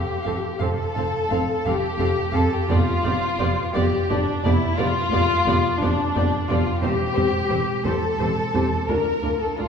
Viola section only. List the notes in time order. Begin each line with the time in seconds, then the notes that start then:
0.26 C4 A4
0.61 C4 A4
0.97 C4 A4
1.31 C4 A4
1.66 C4 A4
1.99 C4 A4
2.34 C4 A4
2.69 B3 G4
3.04 B3 G4
3.39 B3 G4
3.75 B3 G4
4.09 B3 G4
4.44 B3 G4
4.78 B3 G4
5.12 B3 G4
5.47 B3 G4
5.82 B3 G4
6.15 B3 G4
6.49 B3 G4
6.83 C4 G4
7.16 C4 G4
7.51 C4 G4
7.85 C4 G4
8.20 C4 G4
8.54 C4 G4
8.88 D4 F4
9.23 D4 F4
9.58 D4 F4